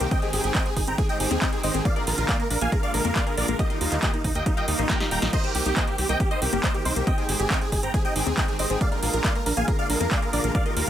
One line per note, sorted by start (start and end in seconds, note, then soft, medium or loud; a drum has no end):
0.00 0.07 C2 medium
0.00 0.05 A#3 medium
0.00 0.09 G4 medium
0.00 closed hi-hat medium
0.11 0.27 D#3 loud
0.11 0.27 G#3 loud
0.11 0.16 C4 medium
0.11 0.27 C4 medium
0.11 0.27 G4 medium
0.11 0.20 D#5 medium
0.11 0.20 G5 loud
0.11 kick loud
0.11 closed hi-hat medium
0.22 0.31 G#4 medium
0.22 0.29 D#5 medium
0.22 closed hi-hat soft
0.33 0.40 G#1 medium
0.33 0.41 D#3 medium
0.33 0.41 G#3 medium
0.33 0.41 C4 medium
0.33 0.41 G4 medium
0.33 0.36 G4 medium
0.33 0.42 G#4 medium
0.33 open hi-hat loud
0.44 0.51 G#1 medium
0.44 0.59 D#3 medium
0.44 0.59 G#3 medium
0.44 0.59 C4 medium
0.44 0.59 G4 medium
0.44 0.48 G4 medium
0.44 0.53 G#4 medium
0.44 closed hi-hat medium
0.55 0.61 C4 loud
0.55 0.63 D#5 medium
0.55 0.63 G5 medium
0.55 kick loud
0.55 clap loud
0.55 closed hi-hat medium
0.66 0.70 C4 medium
0.66 0.74 G#4 medium
0.66 closed hi-hat soft
0.76 0.83 G#1 medium
0.76 0.83 D#4 medium
0.76 0.85 G#4 medium
0.76 kick medium
0.76 open hi-hat medium
0.87 0.94 G#1 medium
0.87 0.95 D#3 medium
0.87 0.95 G#3 medium
0.87 0.95 C4 medium
0.87 0.92 C4 medium
0.87 0.95 G4 medium
0.87 0.96 G5 medium
0.87 0.96 A#5 medium
0.87 closed hi-hat medium
0.98 1.13 D#3 medium
0.98 1.13 G#3 medium
0.98 1.13 C4 medium
0.98 1.13 G4 medium
0.98 1.03 G#4 medium
0.98 1.07 G#4 medium
0.98 kick loud
0.98 closed hi-hat medium
1.09 1.18 D#5 medium
1.09 1.13 G5 medium
1.09 1.18 G5 medium
1.09 closed hi-hat soft
1.20 1.27 G#1 medium
1.20 1.35 D#3 medium
1.20 1.35 G#3 medium
1.20 1.35 C4 medium
1.20 1.24 D#4 medium
1.20 1.35 G4 medium
1.20 1.29 G#4 medium
1.20 open hi-hat loud
1.31 1.37 D#2 medium
1.31 1.35 C4 loud
1.31 1.39 G#4 medium
1.31 closed hi-hat medium
1.42 1.57 D#3 medium
1.42 1.57 G#3 medium
1.42 1.48 C4 loud
1.42 1.57 C4 medium
1.42 1.57 G4 medium
1.42 1.50 D#5 medium
1.42 1.50 G5 medium
1.42 kick loud
1.42 clap loud
1.42 closed hi-hat medium
1.52 1.61 G#4 medium
1.52 1.57 G#4 medium
1.52 closed hi-hat soft
1.63 1.70 G#1 loud
1.63 1.79 D#3 medium
1.63 1.79 G#3 medium
1.63 1.79 C4 medium
1.63 1.70 D#4 medium
1.63 1.79 G4 medium
1.63 1.72 C5 medium
1.63 1.72 D#5 medium
1.63 open hi-hat medium
1.74 1.81 G#1 medium
1.74 1.79 C4 medium
1.74 1.83 G#4 medium
1.74 closed hi-hat medium
1.85 2.00 D3 loud
1.85 2.00 G#3 loud
1.85 1.90 A#3 medium
1.85 2.00 A#3 loud
1.85 2.00 F4 loud
1.85 1.94 D5 medium
1.85 1.94 F5 loud
1.85 kick loud
1.85 closed hi-hat medium
1.96 2.05 A#4 medium
1.96 2.03 D5 medium
1.96 closed hi-hat soft
2.07 2.14 A#1 medium
2.07 2.15 D3 medium
2.07 2.15 G#3 medium
2.07 2.15 A#3 medium
2.07 2.15 F4 medium
2.07 2.10 F4 medium
2.07 2.16 A#4 medium
2.07 open hi-hat loud
2.18 2.24 A#1 medium
2.18 2.33 D3 medium
2.18 2.33 G#3 medium
2.18 2.33 A#3 medium
2.18 2.33 F4 medium
2.18 2.22 F4 medium
2.18 2.26 A#4 medium
2.18 closed hi-hat medium
2.29 2.35 A#3 loud
2.29 2.37 D5 medium
2.29 2.37 F5 medium
2.29 kick loud
2.29 clap loud
2.29 closed hi-hat medium
2.40 2.44 A#3 medium
2.40 2.48 A#4 medium
2.40 closed hi-hat soft
2.50 2.57 A#1 medium
2.50 2.57 D4 medium
2.50 2.59 A#4 medium
2.50 open hi-hat medium
2.61 2.68 A#1 medium
2.61 2.69 D3 medium
2.61 2.69 G#3 medium
2.61 2.66 A#3 medium
2.61 2.69 A#3 medium
2.61 2.69 F4 medium
2.61 2.70 F5 medium
2.61 2.70 G#5 medium
2.61 closed hi-hat medium
2.72 2.87 D3 medium
2.72 2.87 G#3 medium
2.72 2.87 A#3 medium
2.72 2.87 F4 medium
2.72 2.76 G#4 medium
2.72 2.81 A#4 medium
2.72 kick loud
2.72 closed hi-hat medium
2.83 2.92 D5 medium
2.83 2.92 F5 medium
2.83 2.87 F5 medium
2.83 closed hi-hat soft
2.94 3.01 A#1 medium
2.94 3.09 D3 medium
2.94 3.09 G#3 medium
2.94 3.09 A#3 medium
2.94 2.98 D4 medium
2.94 3.09 F4 medium
2.94 3.02 A#4 medium
2.94 open hi-hat loud
3.05 3.11 F2 medium
3.05 3.09 A#3 loud
3.05 3.13 A#4 medium
3.05 closed hi-hat medium
3.15 3.31 D3 medium
3.15 3.31 G#3 medium
3.15 3.31 A#3 medium
3.15 3.22 A#3 loud
3.15 3.31 F4 medium
3.15 3.24 D5 medium
3.15 3.24 F5 medium
3.15 kick loud
3.15 clap loud
3.15 closed hi-hat medium
3.27 3.31 G#4 medium
3.27 3.35 A#4 medium
3.27 closed hi-hat soft
3.37 3.44 A#1 loud
3.37 3.53 D3 medium
3.37 3.53 G#3 medium
3.37 3.53 A#3 medium
3.37 3.44 D4 medium
3.37 3.53 F4 medium
3.37 3.46 A#4 medium
3.37 3.46 D5 medium
3.37 open hi-hat medium
3.48 3.55 A#1 medium
3.48 3.53 A#3 medium
3.48 3.57 A#4 medium
3.48 closed hi-hat medium
3.59 3.74 D#3 loud
3.59 3.74 G3 medium
3.59 3.63 A#3 medium
3.59 3.74 A#3 medium
3.59 3.74 F4 medium
3.59 3.68 G4 medium
3.59 3.68 D#5 loud
3.59 kick loud
3.59 closed hi-hat medium
3.70 3.79 D#4 medium
3.70 3.76 D#5 medium
3.70 closed hi-hat soft
3.81 3.87 D#2 medium
3.81 3.89 D#3 medium
3.81 3.89 G3 medium
3.81 3.89 A#3 medium
3.81 3.90 D#4 medium
3.81 3.83 F4 medium
3.81 3.89 F4 medium
3.81 open hi-hat loud
3.92 3.98 D#2 medium
3.92 4.07 D#3 medium
3.92 4.07 G3 medium
3.92 4.07 A#3 medium
3.92 4.00 D#4 medium
3.92 3.96 F4 medium
3.92 4.07 F4 medium
3.92 clap soft
3.92 closed hi-hat medium
4.03 4.09 A#3 loud
4.03 4.11 G4 medium
4.03 4.11 D#5 loud
4.03 kick loud
4.03 clap loud
4.03 closed hi-hat medium
4.13 4.18 A#3 medium
4.13 4.22 D#4 medium
4.13 closed hi-hat soft
4.24 4.31 D#2 medium
4.24 4.31 D#4 medium
4.24 4.33 D#4 medium
4.24 kick medium
4.24 open hi-hat medium
4.35 4.42 D#2 medium
4.35 4.43 D#3 medium
4.35 4.43 G3 medium
4.35 4.40 A#3 medium
4.35 4.43 A#3 medium
4.35 4.43 F4 medium
4.35 4.44 D#5 medium
4.35 4.44 G5 medium
4.35 closed hi-hat medium
4.46 4.61 D#3 medium
4.46 4.61 G3 medium
4.46 4.61 A#3 medium
4.46 4.55 D#4 medium
4.46 4.61 F4 medium
4.46 4.50 G4 medium
4.46 kick loud
4.46 closed hi-hat medium
4.57 4.66 D#5 medium
4.57 4.61 F5 medium
4.57 4.66 G5 loud
4.57 closed hi-hat soft
4.68 4.74 D#2 loud
4.68 4.83 D#3 medium
4.68 4.83 G3 medium
4.68 4.83 A#3 medium
4.68 4.72 D#4 medium
4.68 4.77 D#4 medium
4.68 4.83 F4 medium
4.68 open hi-hat loud
4.79 4.85 A#1 medium
4.79 4.83 A#3 loud
4.79 4.87 D#4 medium
4.79 closed hi-hat medium
4.89 5.05 D#3 medium
4.89 5.05 G3 medium
4.89 5.05 A#3 medium
4.89 4.96 A#3 loud
4.89 5.05 F4 medium
4.89 4.98 G5 medium
4.89 4.98 A#5 medium
4.89 kick loud
4.89 snare medium
4.89 clap loud
4.89 closed hi-hat medium
5.00 5.09 D#4 medium
5.00 5.05 G4 medium
5.00 snare medium
5.00 closed hi-hat soft
5.11 5.18 D#1 loud
5.11 5.27 D#3 medium
5.11 5.27 G3 medium
5.11 5.27 A#3 medium
5.11 5.18 D#4 medium
5.11 5.27 F4 medium
5.11 5.20 G5 medium
5.11 5.20 A#5 medium
5.11 open hi-hat medium
5.22 5.29 A#1 medium
5.22 5.26 A#3 medium
5.22 5.31 D#4 medium
5.22 snare medium
5.22 closed hi-hat medium
5.33 5.48 D#3 medium
5.33 5.48 A#3 medium
5.33 5.37 A#3 medium
5.33 5.48 C4 medium
5.33 5.48 G4 loud
5.33 5.42 C5 medium
5.33 5.42 D#5 loud
5.33 kick loud
5.33 closed hi-hat medium
5.33 crash medium
5.44 5.53 G4 medium
5.44 5.50 C5 medium
5.44 closed hi-hat soft
5.55 5.61 C2 medium
5.55 5.62 D#3 medium
5.55 5.62 A#3 medium
5.55 5.62 C4 loud
5.55 5.57 D#4 medium
5.55 5.63 G4 medium
5.55 5.62 G4 loud
5.55 open hi-hat loud
5.66 5.72 C2 medium
5.66 5.81 D#3 medium
5.66 5.81 A#3 medium
5.66 5.81 C4 medium
5.66 5.70 D#4 medium
5.66 5.81 G4 medium
5.66 5.74 G4 medium
5.66 closed hi-hat medium
5.77 5.83 A#3 loud
5.77 5.85 C5 medium
5.77 5.85 D#5 loud
5.77 kick loud
5.77 clap loud
5.77 closed hi-hat medium
5.87 5.92 A#3 medium
5.87 5.96 G4 medium
5.87 closed hi-hat soft
5.98 6.05 C2 medium
5.98 6.05 C4 medium
5.98 6.07 G4 medium
5.98 open hi-hat medium
6.09 6.16 C2 medium
6.09 6.17 D#3 medium
6.09 6.17 A#3 medium
6.09 6.13 A#3 medium
6.09 6.17 C4 medium
6.09 6.17 G4 medium
6.09 6.18 D#5 medium
6.09 6.18 G5 medium
6.09 closed hi-hat medium
6.20 6.35 D#3 medium
6.20 6.35 A#3 medium
6.20 6.35 C4 medium
6.20 6.29 G4 medium
6.20 6.24 G4 medium
6.20 6.35 G4 medium
6.20 kick loud
6.20 closed hi-hat medium
6.31 6.40 C5 medium
6.31 6.35 D#5 medium
6.31 6.40 D#5 medium
6.31 closed hi-hat soft
6.42 6.48 C2 loud
6.42 6.57 D#3 medium
6.42 6.57 A#3 medium
6.42 6.46 C4 medium
6.42 6.57 C4 medium
6.42 6.50 G4 medium
6.42 6.57 G4 medium
6.42 open hi-hat loud
6.53 6.59 G1 medium
6.53 6.57 A#3 loud
6.53 6.61 G4 medium
6.53 closed hi-hat medium
6.63 6.79 D#3 medium
6.63 6.70 A#3 loud
6.63 6.79 A#3 medium
6.63 6.79 C4 medium
6.63 6.79 G4 medium
6.63 6.72 C5 medium
6.63 6.72 D#5 medium
6.63 kick loud
6.63 clap loud
6.63 closed hi-hat medium
6.74 6.79 G4 medium
6.74 6.83 G4 medium
6.74 closed hi-hat soft
6.85 6.92 C2 loud
6.85 7.00 D#3 medium
6.85 7.00 A#3 medium
6.85 7.00 C4 medium
6.85 6.92 C4 medium
6.85 6.94 D#4 medium
6.85 7.00 G4 medium
6.85 6.94 C5 medium
6.85 open hi-hat medium
6.96 7.03 C2 medium
6.96 7.00 A#3 medium
6.96 7.05 G4 medium
6.96 closed hi-hat medium
7.07 7.22 D#3 loud
7.07 7.22 G#3 medium
7.07 7.22 C4 loud
7.07 7.11 C4 medium
7.07 7.22 G4 medium
7.07 7.16 D#5 medium
7.07 7.16 G5 loud
7.07 kick loud
7.07 closed hi-hat medium
7.18 7.26 G#4 medium
7.18 7.24 D#5 medium
7.18 closed hi-hat soft
7.29 7.35 G#1 medium
7.29 7.36 D#3 medium
7.29 7.36 G#3 medium
7.29 7.36 C4 medium
7.29 7.31 G4 medium
7.29 7.36 G4 medium
7.29 7.37 G#4 medium
7.29 open hi-hat loud
7.39 7.46 G#1 medium
7.39 7.55 D#3 medium
7.39 7.55 G#3 medium
7.39 7.55 C4 medium
7.39 7.44 G4 medium
7.39 7.55 G4 medium
7.39 7.48 G#4 medium
7.39 closed hi-hat medium
7.50 7.57 C4 loud
7.50 7.59 D#5 medium
7.50 7.59 G5 medium
7.50 kick loud
7.50 clap loud
7.50 closed hi-hat medium
7.61 7.66 C4 medium
7.61 7.70 G#4 medium
7.61 closed hi-hat soft
7.72 7.79 G#1 loud
7.72 7.79 D#4 medium
7.72 7.81 G#4 medium
7.72 kick medium
7.72 open hi-hat loud
7.83 7.90 G#1 medium
7.83 7.91 D#3 medium
7.83 7.91 G#3 medium
7.83 7.87 C4 medium
7.83 7.91 C4 medium
7.83 7.91 G4 medium
7.83 7.92 G5 medium
7.83 7.92 A#5 medium
7.83 closed hi-hat medium
7.94 8.09 D#3 medium
7.94 8.09 G#3 medium
7.94 8.09 C4 medium
7.94 8.09 G4 medium
7.94 7.98 G#4 medium
7.94 8.03 G#4 medium
7.94 kick loud
7.94 closed hi-hat medium
8.05 8.13 D#5 medium
8.05 8.09 G5 medium
8.05 8.13 G5 loud
8.05 closed hi-hat soft
8.16 8.22 G#1 medium
8.16 8.31 D#3 medium
8.16 8.31 G#3 medium
8.16 8.31 C4 medium
8.16 8.20 D#4 medium
8.16 8.31 G4 medium
8.16 8.24 G#4 medium
8.16 open hi-hat loud
8.26 8.33 D#2 medium
8.26 8.31 C4 loud
8.26 8.35 G#4 medium
8.26 closed hi-hat medium
8.37 8.53 D#3 medium
8.37 8.53 G#3 medium
8.37 8.53 C4 medium
8.37 8.44 C4 loud
8.37 8.53 G4 medium
8.37 8.46 D#5 medium
8.37 8.46 G5 medium
8.37 kick loud
8.37 clap loud
8.37 closed hi-hat medium
8.48 8.53 G#4 medium
8.48 8.57 G#4 medium
8.48 closed hi-hat soft
8.59 8.66 G#1 medium
8.59 8.74 D#3 medium
8.59 8.74 G#3 medium
8.59 8.74 C4 medium
8.59 8.66 D#4 medium
8.59 8.74 G4 medium
8.59 8.68 C5 medium
8.59 8.68 D#5 medium
8.59 open hi-hat loud
8.70 8.77 G#1 medium
8.70 8.74 C4 medium
8.70 8.79 G#4 medium
8.70 closed hi-hat medium
8.81 8.96 D3 loud
8.81 8.96 G#3 medium
8.81 8.96 A#3 medium
8.81 8.85 A#3 medium
8.81 8.96 F4 loud
8.81 8.89 D5 medium
8.81 8.89 F5 loud
8.81 kick loud
8.81 closed hi-hat medium
8.92 9.00 A#4 medium
8.92 8.98 D5 medium
8.92 closed hi-hat soft
9.02 9.09 A#1 medium
9.02 9.10 D3 medium
9.02 9.10 G#3 medium
9.02 9.10 A#3 medium
9.02 9.10 F4 loud
9.02 9.05 F4 medium
9.02 9.11 A#4 medium
9.02 open hi-hat loud
9.13 9.20 A#1 medium
9.13 9.29 D3 medium
9.13 9.29 G#3 medium
9.13 9.29 A#3 medium
9.13 9.29 F4 medium
9.13 9.18 F4 medium
9.13 9.22 A#4 medium
9.13 closed hi-hat medium
9.24 9.31 A#3 loud
9.24 9.33 D5 medium
9.24 9.33 F5 loud
9.24 kick loud
9.24 clap loud
9.24 closed hi-hat medium
9.35 9.40 A#3 medium
9.35 9.44 A#4 medium
9.35 closed hi-hat soft
9.46 9.53 A#1 loud
9.46 9.53 D4 medium
9.46 9.55 A#4 medium
9.46 open hi-hat loud
9.57 9.64 A#1 medium
9.57 9.65 D3 medium
9.57 9.65 G#3 medium
9.57 9.65 A#3 medium
9.57 9.61 A#3 medium
9.57 9.65 F4 medium
9.57 9.66 F5 medium
9.57 9.66 G#5 medium
9.57 closed hi-hat medium
9.68 9.83 D3 medium
9.68 9.83 G#3 medium
9.68 9.83 A#3 medium
9.68 9.83 F4 medium
9.68 9.72 G#4 medium
9.68 9.76 A#4 medium
9.68 kick loud
9.68 closed hi-hat medium
9.79 9.87 D5 medium
9.79 9.87 F5 medium
9.79 9.83 F5 medium
9.79 closed hi-hat soft
9.90 9.96 A#1 loud
9.90 10.05 D3 medium
9.90 10.05 G#3 medium
9.90 10.05 A#3 medium
9.90 9.94 D4 medium
9.90 10.05 F4 medium
9.90 9.98 A#4 medium
9.90 open hi-hat loud
10.00 10.07 F2 medium
10.00 10.05 A#3 loud
10.00 10.09 A#4 medium
10.00 closed hi-hat medium
10.11 10.27 D3 medium
10.11 10.27 G#3 medium
10.11 10.18 A#3 loud
10.11 10.27 A#3 medium
10.11 10.27 F4 medium
10.11 10.20 D5 medium
10.11 10.20 F5 medium
10.11 kick loud
10.11 clap loud
10.11 closed hi-hat medium
10.22 10.27 G#4 medium
10.22 10.31 A#4 medium
10.22 closed hi-hat soft
10.33 10.40 A#1 medium
10.33 10.48 D3 medium
10.33 10.48 G#3 medium
10.33 10.48 A#3 medium
10.33 10.40 D4 medium
10.33 10.48 F4 medium
10.33 10.42 A#4 medium
10.33 10.42 D5 medium
10.33 open hi-hat loud
10.44 10.50 A#1 medium
10.44 10.48 A#3 medium
10.44 10.52 A#4 medium
10.44 closed hi-hat medium
10.55 10.70 D#3 loud
10.55 10.70 G3 loud
10.55 10.70 A#3 medium
10.55 10.59 A#3 medium
10.55 10.70 F4 loud
10.55 10.63 D5 medium
10.55 10.63 F5 loud
10.55 kick loud
10.55 closed hi-hat medium
10.66 10.74 A#4 medium
10.66 10.72 D#5 medium
10.66 closed hi-hat soft
10.76 10.83 D#2 medium
10.76 10.84 D#3 medium
10.76 10.84 G3 medium
10.76 10.84 A#3 medium
10.76 10.84 F4 medium
10.76 10.79 F4 medium
10.76 10.85 A#4 medium
10.76 open hi-hat loud